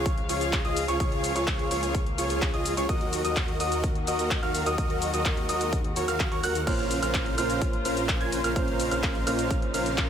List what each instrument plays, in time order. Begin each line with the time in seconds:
Already playing: detuned saw bass C#2, string section C#3 F3 G#3 F5, supersaw synth F4 G#4 C#5, grand piano C#6
0.06 kick, closed hi-hat, cabasa
0.18 closed hi-hat
0.29 detuned saw bass C#2, supersaw synth F4 G#4 C#5, grand piano C#6, open hi-hat, cabasa
0.41 closed hi-hat, cabasa
0.53 kick, clap, closed hi-hat, cabasa
0.65 detuned saw bass C#2, supersaw synth F4 G#4 D#5, grand piano D#6, closed hi-hat
0.77 open hi-hat, cabasa
0.88 detuned saw bass C#2, supersaw synth F4 G#4 C#5, grand piano C#6, closed hi-hat, cabasa
1.00 detuned saw bass C#2, string section A#3, supersaw synth F4 G#4 C#5, grand piano C#6, kick, closed hi-hat, cabasa
1.12 closed hi-hat
1.24 open hi-hat, cabasa
1.36 detuned saw bass C#2, supersaw synth F4 G#4 C#5, grand piano C#6, closed hi-hat, cabasa
1.47 kick, clap, closed hi-hat, cabasa
1.59 closed hi-hat
1.71 detuned saw bass C#2, supersaw synth F4 G#4 C#5, grand piano C#6, open hi-hat, cabasa
1.83 closed hi-hat, cabasa
1.95 kick, closed hi-hat, cabasa
2.06 closed hi-hat
2.18 detuned saw bass C#2, supersaw synth F4 G#4 C#5, grand piano C#6, open hi-hat, cabasa
2.30 closed hi-hat, cabasa
2.42 kick, clap, closed hi-hat, cabasa
2.54 detuned saw bass C#2, supersaw synth F4 G#4 D#5, grand piano D#6, closed hi-hat
2.66 open hi-hat, cabasa
2.77 detuned saw bass C#2, supersaw synth F4 G#4 C#5, grand piano C#6, closed hi-hat, cabasa
2.89 detuned saw bass D#2, string section D#3 F#3 A#3 F#4, supersaw synth F#4 A#4 D#5, grand piano D#6, kick, closed hi-hat, cabasa
3.01 closed hi-hat
3.13 open hi-hat, cabasa
3.25 detuned saw bass D#2, supersaw synth F#4 A#4 D#5, grand piano D#6, closed hi-hat, cabasa
3.36 kick, clap, closed hi-hat, cabasa
3.48 closed hi-hat
3.60 detuned saw bass D#2, supersaw synth F#4 A#4 D#5, grand piano D#6, open hi-hat, cabasa
3.72 closed hi-hat, cabasa
3.84 kick, closed hi-hat, cabasa
3.95 closed hi-hat
4.07 detuned saw bass D#2, supersaw synth F#4 A#4 D#5, grand piano D#6, open hi-hat, cabasa
4.19 closed hi-hat, cabasa
4.31 kick, clap, closed hi-hat, cabasa
4.43 detuned saw bass D#2, supersaw synth F#4 A#4 F5, grand piano F6, closed hi-hat
4.55 open hi-hat, cabasa
4.66 detuned saw bass D#2, supersaw synth F#4 A#4 D#5, grand piano D#6, closed hi-hat, cabasa
4.78 detuned saw bass D#2, string section G#3, supersaw synth F#4 A#4 D#5, grand piano D#6, kick, closed hi-hat, cabasa
4.90 closed hi-hat
5.02 open hi-hat, cabasa
5.14 detuned saw bass D#2, supersaw synth F#4 A#4 D#5, grand piano D#6, closed hi-hat, cabasa
5.25 kick, clap, closed hi-hat, cabasa
5.37 closed hi-hat
5.49 detuned saw bass D#2, supersaw synth F#4 A#4 D#5, grand piano D#6, open hi-hat, cabasa
5.61 closed hi-hat, cabasa
5.73 kick, closed hi-hat, cabasa
5.84 closed hi-hat
5.96 detuned saw bass D#2, supersaw synth F#4 A#4 C#5, grand piano C#6, open hi-hat, cabasa
6.08 detuned saw bass D#2, supersaw synth F#4 A#4 F5, grand piano F6, closed hi-hat, cabasa
6.20 kick, clap, closed hi-hat, cabasa
6.32 detuned saw bass D#2, supersaw synth F#4 A#4 C#5, grand piano C#6, closed hi-hat
6.43 detuned saw bass D#2, supersaw synth F#4 A#4 F#5, grand piano F#6, open hi-hat, cabasa
6.55 closed hi-hat, cabasa
6.66 detuned saw bass A#1, string section C#3 A#3 F4 C5, felt piano A#3 C#4 F4 C5, supersaw synth C#4 F4 A#4 C5 F5, grand piano F6, kick, closed hi-hat, crash, cabasa
6.79 closed hi-hat
6.91 open hi-hat, cabasa
7.02 detuned saw bass A#1, supersaw synth C#4 F4 A#4 C5 F5, grand piano F6, closed hi-hat, cabasa
7.14 kick, clap, closed hi-hat, cabasa
7.26 closed hi-hat
7.37 detuned saw bass A#1, felt piano A#3 C#4 F4 C5, supersaw synth C#4 F4 A#4 C5 F5, grand piano F6, open hi-hat, cabasa
7.50 closed hi-hat, cabasa
7.62 kick, closed hi-hat, cabasa
7.73 closed hi-hat
7.85 detuned saw bass A#1, supersaw synth C#4 F4 A#4 C5 F5, grand piano F6, open hi-hat, cabasa
7.97 closed hi-hat, cabasa
8.09 kick, clap, closed hi-hat, cabasa
8.21 detuned saw bass A#1, supersaw synth C#4 F4 A#4 C5 G#5, grand piano G#6, closed hi-hat
8.32 open hi-hat, cabasa
8.44 detuned saw bass A#1, supersaw synth C#4 F4 A#4 C5 F5, grand piano F6, closed hi-hat, cabasa
8.55 detuned saw bass A#1, felt piano A#3 C#4 F4 C5, supersaw synth C#4 F4 A#4 C5 F5, string section D#4, grand piano F6, kick, closed hi-hat, cabasa
8.68 closed hi-hat
8.80 open hi-hat, cabasa
8.91 detuned saw bass A#1, supersaw synth C#4 F4 A#4 C5 F5, grand piano F6, closed hi-hat, cabasa
9.03 kick, clap, closed hi-hat, cabasa
9.15 closed hi-hat
9.26 detuned saw bass A#1, felt piano A#3 C#4 F4 C5, supersaw synth C#4 F4 A#4 C5 F5, grand piano F6, open hi-hat, cabasa
9.39 closed hi-hat, cabasa
9.51 kick, closed hi-hat, cabasa
9.62 closed hi-hat
9.74 detuned saw bass A#1, supersaw synth C#4 F4 A#4 C5 F5, grand piano F6, open hi-hat, cabasa
9.86 closed hi-hat, cabasa
9.98 kick, clap, closed hi-hat, cabasa